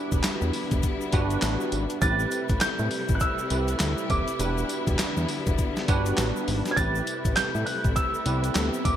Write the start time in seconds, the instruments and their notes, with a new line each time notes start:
Already playing: string section D3 G3 B3 E4, tine electric piano D4 F#4 G4 B4
0.12 analog synth bass E1, kick, closed hi-hat, shaker
0.23 snare, clap, closed hi-hat, tambourine, shaker
0.41 analog synth bass E2, shaker
0.53 open hi-hat, tambourine
0.71 analog synth bass E1, kick, closed hi-hat, shaker
0.83 kick, closed hi-hat, shaker
1.01 shaker
1.12 analog synth bass G1, tine electric piano D4 F#4 G4 B4, kick, closed hi-hat, tambourine
1.30 closed hi-hat, shaker
1.42 analog synth bass A1, snare, clap, closed hi-hat, tambourine, shaker
1.60 shaker
1.72 analog synth bass G#1, closed hi-hat, tambourine
1.90 closed hi-hat, shaker
2.02 analog synth bass A1, string section C3 A3 E4, tine electric piano C4 E4 G4 B4, grand piano A6, kick, closed hi-hat, tambourine, shaker
2.19 shaker
2.31 closed hi-hat, tambourine, shaker
2.49 analog synth bass A1, kick, closed hi-hat, shaker
2.61 grand piano G6, snare, clap, closed hi-hat, tambourine, shaker
2.79 analog synth bass A2, shaker
2.91 open hi-hat, tambourine
3.08 analog synth bass A1, kick, closed hi-hat, shaker
3.15 grand piano F#6
3.20 grand piano E6, kick, closed hi-hat, shaker
3.39 shaker
3.50 analog synth bass C2, tine electric piano C4 E4 G4 B4, closed hi-hat, tambourine
3.68 closed hi-hat, shaker
3.79 analog synth bass D2, snare, clap, closed hi-hat, tambourine, shaker
3.98 shaker
4.10 analog synth bass D#1, grand piano D6, kick, closed hi-hat, tambourine
4.28 closed hi-hat, shaker
4.39 analog synth bass E1, string section D3 B3, tine electric piano D4 F#4 G4 B4, closed hi-hat, tambourine, shaker
4.58 shaker
4.69 closed hi-hat, tambourine, shaker
4.87 analog synth bass E1, kick, closed hi-hat, shaker
4.99 snare, clap, closed hi-hat, tambourine, shaker
5.17 analog synth bass E2, shaker
5.29 open hi-hat, tambourine
5.47 analog synth bass E1, kick, closed hi-hat, shaker
5.58 kick, closed hi-hat, shaker
5.76 snare, shaker
5.88 analog synth bass G1, tine electric piano D4 F#4 G4 B4, kick, closed hi-hat, tambourine
6.06 closed hi-hat, shaker
6.17 analog synth bass A1, snare, clap, closed hi-hat, tambourine, shaker
6.36 shaker
6.48 analog synth bass G#1, open hi-hat, tambourine
6.65 snare, closed hi-hat, shaker
6.71 grand piano G#6
6.76 analog synth bass A1, string section C3 A3 E4, tine electric piano C4 E4 G4 B4, grand piano A6, kick, closed hi-hat, tambourine, shaker
6.95 shaker
7.07 closed hi-hat, tambourine, shaker
7.25 analog synth bass A1, kick, closed hi-hat, shaker
7.36 analog synth bass A2, grand piano G6, snare, clap, closed hi-hat, tambourine, shaker
7.55 analog synth bass A2, shaker
7.66 grand piano F#6, open hi-hat, tambourine
7.84 analog synth bass A1, kick, closed hi-hat, shaker
7.96 grand piano E6, kick, closed hi-hat, shaker
8.14 shaker
8.25 analog synth bass C2, tine electric piano B3 E4 G4 B4, closed hi-hat, tambourine
8.32 tine electric piano C4
8.44 closed hi-hat, shaker
8.55 analog synth bass D2, snare, clap, closed hi-hat, tambourine, shaker
8.74 shaker
8.85 analog synth bass D#1, grand piano D6, kick, closed hi-hat, tambourine